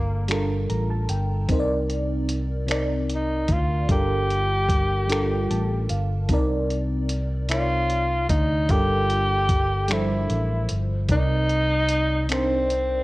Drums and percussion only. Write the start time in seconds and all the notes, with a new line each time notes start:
0.28 finger snap, closed hi-hat
0.70 closed hi-hat
1.09 closed hi-hat
1.49 kick, closed hi-hat
1.90 closed hi-hat
2.29 closed hi-hat
2.69 finger snap, closed hi-hat
3.10 closed hi-hat
3.48 kick, closed hi-hat
3.89 kick, closed hi-hat
4.31 closed hi-hat
4.69 kick, closed hi-hat
5.09 finger snap, closed hi-hat
5.51 closed hi-hat
5.89 closed hi-hat
6.29 kick, closed hi-hat
6.71 closed hi-hat
7.09 closed hi-hat
7.49 finger snap, closed hi-hat
7.90 closed hi-hat
8.29 kick, closed hi-hat
8.69 kick, closed hi-hat
9.10 closed hi-hat
9.49 kick, closed hi-hat
9.88 finger snap, closed hi-hat
10.30 closed hi-hat
10.69 closed hi-hat
11.09 kick, closed hi-hat
11.50 closed hi-hat
11.89 closed hi-hat
12.29 finger snap, closed hi-hat
12.70 closed hi-hat